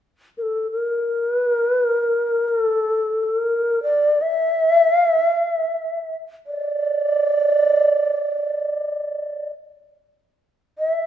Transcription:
0.38 0.43 A#4 soft
0.42 0.71 A4 soft
0.71 1.33 A#4 medium
1.33 1.50 B4 medium
1.50 1.68 A#4 medium
1.68 1.84 B4 medium
1.84 2.48 A#4 medium
2.48 2.60 A#4 medium
2.60 3.23 A4 medium
3.23 3.36 A4 medium
3.36 3.82 A#4 medium
3.83 4.23 D5 medium
4.21 4.92 E5 medium
4.92 5.07 F5 medium
5.07 5.31 E5 medium
5.31 5.46 F5 medium
5.46 6.17 E5 medium
6.47 9.49 D5 medium
10.79 11.06 E5 medium

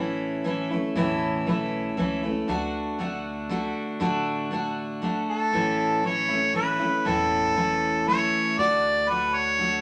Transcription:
0.00 0.65 A1 medium
0.00 0.43 E3 medium
0.00 0.45 A3 medium
0.00 0.45 C#4 medium
0.00 0.46 E4 medium
0.44 0.70 E3 medium
0.44 0.70 A3 medium
0.44 0.70 C#4 medium
0.44 0.69 E4 medium
0.70 0.95 A3 soft
0.70 0.96 C#4 soft
0.70 0.96 E4 soft
0.95 1.36 E1 medium
0.95 1.46 A2 medium
0.95 1.45 E3 medium
0.95 1.47 A3 medium
0.95 1.47 C#4 medium
0.95 1.47 E4 medium
1.46 1.90 B1 medium
1.46 1.96 E3 medium
1.46 1.98 A3 medium
1.46 1.98 C#4 medium
1.46 1.99 E4 medium
1.97 2.41 C#2 medium
1.97 2.23 E3 medium
1.97 2.23 A3 medium
1.97 2.23 C#4 medium
1.97 2.21 E4 medium
2.22 2.47 A3 soft
2.22 2.49 C#4 soft
2.22 2.48 E4 soft
2.48 3.70 D2 medium
2.48 2.98 D3 medium
2.48 2.99 A3 medium
2.48 2.99 D4 medium
2.48 3.00 F#4 medium
2.99 3.48 D3 medium
2.99 3.50 A3 medium
2.99 3.50 D4 medium
2.99 3.51 F#4 medium
3.49 3.99 D3 medium
3.49 4.00 A3 medium
3.49 4.00 D4 medium
3.49 4.01 F#4 medium
4.00 5.23 A1 medium
4.00 4.50 D3 medium
4.00 4.51 A3 medium
4.00 4.52 D4 medium
4.00 4.52 F#4 medium
4.51 5.00 D3 medium
4.51 5.01 A3 medium
4.51 5.02 D4 medium
4.51 5.03 F#4 medium
5.02 5.53 D3 medium
5.02 5.52 A3 medium
5.02 5.54 D4 medium
5.02 5.54 F#4 medium
5.30 6.01 A4 medium
5.52 6.75 A1 medium
5.52 6.04 A2 medium
5.52 6.02 E3 medium
5.52 6.03 A3 medium
5.52 6.04 C#4 medium
5.52 6.05 E4 medium
6.03 6.29 E3 soft
6.03 6.30 A3 medium
6.03 6.29 C#4 medium
6.03 6.27 E4 medium
6.03 6.53 C#5 medium
6.28 6.53 A3 soft
6.28 6.54 C#4 soft
6.28 6.54 E4 soft
6.54 6.80 E3 medium
6.54 6.80 A3 medium
6.54 6.79 C#4 medium
6.54 6.78 E4 medium
6.54 7.08 B4 medium
6.79 7.05 A3 soft
6.79 7.05 C#4 soft
6.79 7.05 E4 soft
7.05 8.28 E1 medium
7.05 7.56 A2 medium
7.05 7.54 E3 medium
7.05 7.56 A3 medium
7.05 7.56 C#4 medium
7.05 7.57 E4 medium
7.05 8.07 A4 medium
7.55 8.05 E3 soft
7.55 8.07 A3 soft
7.55 8.07 C#4 medium
7.55 8.08 E4 medium
8.06 8.57 E3 medium
8.06 8.58 A3 medium
8.06 8.59 C#4 medium
8.06 8.59 E4 medium
8.06 8.55 C#5 medium
8.58 9.80 D2 medium
8.58 9.08 D3 medium
8.58 9.08 A3 medium
8.58 9.10 D4 medium
8.58 9.11 F#4 medium
8.58 9.11 D5 medium
9.09 9.58 D3 soft
9.09 9.59 A3 medium
9.09 9.60 D4 medium
9.09 9.61 F#4 medium
9.09 9.36 B4 medium
9.35 9.81 C#5 medium
9.59 9.81 D3 medium
9.59 9.81 A3 soft
9.59 9.81 D4 medium
9.59 9.81 F#4 medium

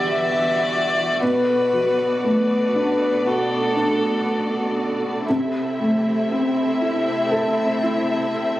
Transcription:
0.00 1.18 E2 medium
0.00 0.17 D3 soft
0.00 1.18 E3 soft
0.00 1.24 G3 soft
0.00 1.19 B3 soft
0.00 5.25 F#4 soft
0.00 1.18 G4 soft
0.00 0.22 D5 medium
0.00 1.20 E5 medium
0.23 1.20 D5 medium
1.22 5.25 B2 medium
1.22 5.25 B3 medium
1.22 8.60 A4 soft
1.22 2.21 B4 medium
1.22 5.25 D5 medium
1.73 3.73 F#3 soft
2.24 4.24 A3 soft
2.24 3.30 B4 medium
2.75 3.75 D4 soft
3.26 5.25 F#4 soft
3.26 4.79 A4 medium
3.76 5.25 D4 soft
5.29 8.60 C3 medium
5.29 8.60 C4 medium
5.29 8.60 E4 medium
5.29 8.60 E5 medium
5.80 7.79 A3 soft
6.31 8.31 C4 soft
6.81 7.81 E4 soft
7.31 8.60 A4 soft
7.83 8.60 E4 soft

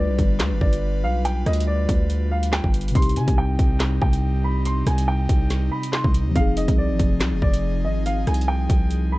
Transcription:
0.00 0.10 D2 loud
0.00 2.89 G3 medium
0.00 2.91 G3 medium
0.00 2.91 D4 medium
0.00 2.92 F4 medium
0.00 2.92 B4 medium
0.00 2.94 B4 medium
0.00 0.57 D5 medium
0.09 0.18 B1 loud
0.19 0.41 G1 loud
0.19 kick loud
0.19 closed hi-hat medium
0.40 0.53 D2 loud
0.40 snare loud
0.40 clap loud
0.40 closed hi-hat medium
0.51 0.61 G1 loud
0.61 1.05 G1 loud
0.61 1.01 D5 medium
0.61 kick loud
0.73 closed hi-hat medium
1.04 1.44 B1 loud
1.04 1.20 F5 medium
1.25 1.41 G5 medium
1.25 closed hi-hat medium
1.46 1.87 D2 loud
1.46 1.63 D#5 medium
1.46 cross-stick medium
1.46 closed hi-hat medium
1.53 closed hi-hat medium
1.60 closed hi-hat medium
1.67 2.27 D5 medium
1.89 2.61 D2 loud
1.89 kick loud
1.89 closed hi-hat medium
2.10 closed hi-hat medium
2.31 2.48 F5 medium
2.43 closed hi-hat medium
2.53 2.69 G5 medium
2.53 snare loud
2.53 clap medium
2.64 2.94 G1 loud
2.64 kick loud
2.74 closed hi-hat medium
2.81 closed hi-hat medium
2.88 6.29 C3 medium
2.88 closed hi-hat medium
2.94 3.18 C2 loud
2.94 6.32 C3 medium
2.94 6.32 G3 medium
2.94 6.31 C4 medium
2.94 9.19 D#4 medium
2.94 6.32 D#4 medium
2.94 3.11 C6 loud
2.94 kick loud
2.94 closed hi-hat medium
3.00 6.34 G4 medium
3.00 closed hi-hat medium
3.09 closed hi-hat medium
3.16 3.27 C3 loud
3.16 3.33 G#5 medium
3.16 closed hi-hat medium
3.28 3.58 C2 loud
3.28 kick loud
3.28 closed hi-hat medium
3.38 3.98 G5 medium
3.59 4.00 C2 loud
3.59 kick loud
3.59 closed hi-hat medium
3.80 snare loud
3.80 clap loud
3.80 closed hi-hat medium
4.02 4.83 C2 loud
4.02 4.42 G5 medium
4.02 kick loud
4.13 closed hi-hat medium
4.44 4.60 B5 medium
4.65 4.82 C6 medium
4.65 closed hi-hat medium
4.87 5.27 C2 loud
4.87 5.03 G#5 medium
4.87 cross-stick medium
4.87 closed hi-hat medium
4.98 closed hi-hat medium
5.08 5.68 G5 medium
5.29 5.70 C2 loud
5.29 kick loud
5.29 closed hi-hat medium
5.50 snare medium
5.50 closed hi-hat medium
5.71 5.88 B5 medium
5.83 closed hi-hat medium
5.92 6.09 C6 medium
5.92 snare loud
5.92 clap medium
6.04 6.27 C2 loud
6.04 kick loud
6.14 closed hi-hat medium
6.26 6.35 D#2 loud
6.31 9.19 F3 medium
6.31 9.19 C4 medium
6.36 6.67 F1 loud
6.36 9.19 F3 medium
6.36 9.19 D#4 medium
6.36 9.19 G#4 medium
6.36 6.52 F5 medium
6.36 kick loud
6.36 closed hi-hat medium
6.40 9.19 G#4 medium
6.57 6.73 D#5 medium
6.57 closed hi-hat medium
6.68 6.91 C2 loud
6.68 kick loud
6.68 closed hi-hat medium
6.78 7.38 D5 medium
6.89 6.99 G#1 loud
6.99 7.22 F1 loud
6.99 kick loud
6.99 closed hi-hat medium
7.20 7.34 C2 loud
7.20 snare loud
7.20 clap loud
7.20 closed hi-hat medium
7.32 7.42 F1 loud
7.42 7.86 F1 loud
7.42 7.82 D5 medium
7.42 kick loud
7.54 closed hi-hat medium
7.84 8.25 G#1 loud
7.84 8.01 D#5 medium
8.06 8.22 F5 medium
8.06 closed hi-hat medium
8.27 8.68 C2 loud
8.27 8.43 G#5 medium
8.27 cross-stick medium
8.27 closed hi-hat medium
8.34 closed hi-hat medium
8.41 closed hi-hat medium
8.48 9.08 G5 medium
8.70 9.19 C2 loud
8.70 kick loud
8.70 closed hi-hat medium
8.91 closed hi-hat medium
9.12 9.19 B5 medium

